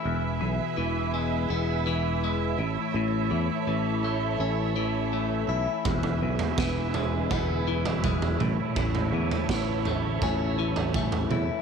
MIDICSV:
0, 0, Header, 1, 5, 480
1, 0, Start_track
1, 0, Tempo, 726392
1, 29, Time_signature, 4, 2, 24, 8
1, 7678, End_track
2, 0, Start_track
2, 0, Title_t, "String section"
2, 0, Program_c, 0, 48
2, 0, Note_on_c, 0, 76, 86
2, 29, Note_on_c, 0, 71, 65
2, 31, Note_on_c, 0, 64, 78
2, 34, Note_on_c, 0, 68, 67
2, 1692, Note_off_c, 0, 71, 0
2, 1695, Note_off_c, 0, 68, 0
2, 1713, Note_on_c, 0, 69, 66
2, 1713, Note_on_c, 0, 73, 66
2, 3845, Note_off_c, 0, 64, 0
2, 3851, Note_off_c, 0, 69, 0
2, 3851, Note_off_c, 0, 73, 0
2, 3856, Note_on_c, 0, 64, 75
2, 3859, Note_on_c, 0, 68, 62
2, 3861, Note_on_c, 0, 71, 63
2, 5529, Note_off_c, 0, 68, 0
2, 5530, Note_off_c, 0, 71, 0
2, 5544, Note_on_c, 0, 73, 70
2, 5549, Note_on_c, 0, 69, 63
2, 7677, Note_off_c, 0, 64, 0
2, 7678, Note_off_c, 0, 69, 0
2, 7678, Note_off_c, 0, 73, 0
2, 7678, Note_off_c, 0, 76, 0
2, 7678, End_track
3, 0, Start_track
3, 0, Title_t, "Clean electric guitar"
3, 0, Program_c, 1, 27
3, 0, Note_on_c, 1, 52, 66
3, 0, Note_on_c, 1, 64, 67
3, 38, Note_on_c, 1, 40, 75
3, 269, Note_on_c, 1, 47, 64
3, 508, Note_off_c, 1, 52, 0
3, 510, Note_on_c, 1, 52, 63
3, 752, Note_on_c, 1, 56, 66
3, 993, Note_on_c, 1, 59, 68
3, 1231, Note_off_c, 1, 52, 0
3, 1233, Note_off_c, 1, 40, 0
3, 1234, Note_on_c, 1, 52, 72
3, 1469, Note_off_c, 1, 47, 0
3, 1471, Note_off_c, 1, 56, 0
3, 1479, Note_on_c, 1, 56, 72
3, 1711, Note_off_c, 1, 59, 0
3, 1711, Note_on_c, 1, 45, 58
3, 1714, Note_off_c, 1, 56, 0
3, 1947, Note_off_c, 1, 45, 0
3, 1955, Note_on_c, 1, 45, 75
3, 2112, Note_off_c, 1, 64, 0
3, 2184, Note_off_c, 1, 52, 0
3, 2186, Note_on_c, 1, 52, 63
3, 2427, Note_off_c, 1, 52, 0
3, 2429, Note_on_c, 1, 52, 72
3, 2672, Note_on_c, 1, 57, 67
3, 2909, Note_on_c, 1, 61, 62
3, 3144, Note_off_c, 1, 52, 0
3, 3146, Note_on_c, 1, 52, 70
3, 3153, Note_off_c, 1, 45, 0
3, 3382, Note_off_c, 1, 57, 0
3, 3390, Note_on_c, 1, 57, 62
3, 3627, Note_on_c, 1, 64, 61
3, 3870, Note_off_c, 1, 57, 0
3, 3870, Note_off_c, 1, 61, 0
3, 3874, Note_on_c, 1, 40, 75
3, 4114, Note_on_c, 1, 47, 57
3, 4351, Note_off_c, 1, 52, 0
3, 4354, Note_on_c, 1, 52, 68
3, 4589, Note_on_c, 1, 56, 59
3, 4831, Note_on_c, 1, 59, 72
3, 5070, Note_off_c, 1, 52, 0
3, 5073, Note_off_c, 1, 40, 0
3, 5073, Note_on_c, 1, 52, 74
3, 5307, Note_off_c, 1, 56, 0
3, 5313, Note_off_c, 1, 47, 0
3, 5315, Note_on_c, 1, 56, 65
3, 5551, Note_off_c, 1, 59, 0
3, 5552, Note_on_c, 1, 45, 62
3, 5553, Note_off_c, 1, 56, 0
3, 5786, Note_off_c, 1, 45, 0
3, 5794, Note_on_c, 1, 45, 72
3, 5939, Note_off_c, 1, 64, 0
3, 6038, Note_off_c, 1, 52, 0
3, 6041, Note_on_c, 1, 52, 67
3, 6277, Note_off_c, 1, 52, 0
3, 6279, Note_on_c, 1, 52, 66
3, 6520, Note_on_c, 1, 57, 66
3, 6760, Note_on_c, 1, 61, 71
3, 6993, Note_off_c, 1, 45, 0
3, 6993, Note_off_c, 1, 52, 0
3, 6996, Note_on_c, 1, 52, 64
3, 7233, Note_off_c, 1, 57, 0
3, 7241, Note_on_c, 1, 57, 73
3, 7477, Note_on_c, 1, 64, 60
3, 7678, Note_off_c, 1, 52, 0
3, 7678, Note_off_c, 1, 57, 0
3, 7678, Note_off_c, 1, 61, 0
3, 7678, Note_off_c, 1, 64, 0
3, 7678, End_track
4, 0, Start_track
4, 0, Title_t, "Fingered electric bass"
4, 0, Program_c, 2, 33
4, 35, Note_on_c, 2, 28, 98
4, 259, Note_off_c, 2, 28, 0
4, 278, Note_on_c, 2, 35, 90
4, 387, Note_off_c, 2, 35, 0
4, 515, Note_on_c, 2, 28, 85
4, 966, Note_off_c, 2, 28, 0
4, 991, Note_on_c, 2, 28, 84
4, 1684, Note_off_c, 2, 28, 0
4, 1708, Note_on_c, 2, 33, 91
4, 1822, Note_off_c, 2, 33, 0
4, 1945, Note_on_c, 2, 33, 104
4, 2174, Note_off_c, 2, 33, 0
4, 2187, Note_on_c, 2, 40, 93
4, 2302, Note_off_c, 2, 40, 0
4, 2426, Note_on_c, 2, 33, 81
4, 2882, Note_off_c, 2, 33, 0
4, 2906, Note_on_c, 2, 33, 82
4, 3602, Note_off_c, 2, 33, 0
4, 3623, Note_on_c, 2, 35, 77
4, 3740, Note_off_c, 2, 35, 0
4, 3868, Note_on_c, 2, 28, 87
4, 4096, Note_off_c, 2, 28, 0
4, 4113, Note_on_c, 2, 35, 90
4, 4225, Note_off_c, 2, 35, 0
4, 4346, Note_on_c, 2, 28, 81
4, 4803, Note_off_c, 2, 28, 0
4, 4831, Note_on_c, 2, 28, 84
4, 5525, Note_off_c, 2, 28, 0
4, 5557, Note_on_c, 2, 33, 88
4, 5668, Note_off_c, 2, 33, 0
4, 5788, Note_on_c, 2, 33, 92
4, 6017, Note_off_c, 2, 33, 0
4, 6029, Note_on_c, 2, 40, 101
4, 6144, Note_off_c, 2, 40, 0
4, 6271, Note_on_c, 2, 33, 81
4, 6725, Note_off_c, 2, 33, 0
4, 6753, Note_on_c, 2, 33, 80
4, 7445, Note_off_c, 2, 33, 0
4, 7476, Note_on_c, 2, 40, 80
4, 7587, Note_off_c, 2, 40, 0
4, 7678, End_track
5, 0, Start_track
5, 0, Title_t, "Drums"
5, 3866, Note_on_c, 9, 43, 82
5, 3867, Note_on_c, 9, 36, 114
5, 3932, Note_off_c, 9, 43, 0
5, 3933, Note_off_c, 9, 36, 0
5, 3987, Note_on_c, 9, 43, 81
5, 4053, Note_off_c, 9, 43, 0
5, 4223, Note_on_c, 9, 43, 81
5, 4289, Note_off_c, 9, 43, 0
5, 4347, Note_on_c, 9, 36, 107
5, 4351, Note_on_c, 9, 38, 72
5, 4413, Note_off_c, 9, 36, 0
5, 4417, Note_off_c, 9, 38, 0
5, 4586, Note_on_c, 9, 43, 82
5, 4653, Note_off_c, 9, 43, 0
5, 4829, Note_on_c, 9, 36, 94
5, 4829, Note_on_c, 9, 43, 72
5, 4895, Note_off_c, 9, 36, 0
5, 4895, Note_off_c, 9, 43, 0
5, 5190, Note_on_c, 9, 43, 81
5, 5257, Note_off_c, 9, 43, 0
5, 5311, Note_on_c, 9, 36, 102
5, 5312, Note_on_c, 9, 47, 74
5, 5377, Note_off_c, 9, 36, 0
5, 5378, Note_off_c, 9, 47, 0
5, 5433, Note_on_c, 9, 43, 80
5, 5500, Note_off_c, 9, 43, 0
5, 5553, Note_on_c, 9, 47, 79
5, 5619, Note_off_c, 9, 47, 0
5, 5791, Note_on_c, 9, 36, 104
5, 5792, Note_on_c, 9, 43, 89
5, 5857, Note_off_c, 9, 36, 0
5, 5858, Note_off_c, 9, 43, 0
5, 5911, Note_on_c, 9, 43, 76
5, 5978, Note_off_c, 9, 43, 0
5, 6155, Note_on_c, 9, 43, 76
5, 6221, Note_off_c, 9, 43, 0
5, 6271, Note_on_c, 9, 36, 101
5, 6276, Note_on_c, 9, 38, 78
5, 6337, Note_off_c, 9, 36, 0
5, 6342, Note_off_c, 9, 38, 0
5, 6512, Note_on_c, 9, 43, 77
5, 6578, Note_off_c, 9, 43, 0
5, 6752, Note_on_c, 9, 36, 108
5, 6752, Note_on_c, 9, 43, 85
5, 6818, Note_off_c, 9, 36, 0
5, 6818, Note_off_c, 9, 43, 0
5, 7111, Note_on_c, 9, 43, 82
5, 7177, Note_off_c, 9, 43, 0
5, 7231, Note_on_c, 9, 47, 65
5, 7232, Note_on_c, 9, 36, 106
5, 7297, Note_off_c, 9, 47, 0
5, 7298, Note_off_c, 9, 36, 0
5, 7350, Note_on_c, 9, 43, 85
5, 7416, Note_off_c, 9, 43, 0
5, 7471, Note_on_c, 9, 47, 79
5, 7537, Note_off_c, 9, 47, 0
5, 7678, End_track
0, 0, End_of_file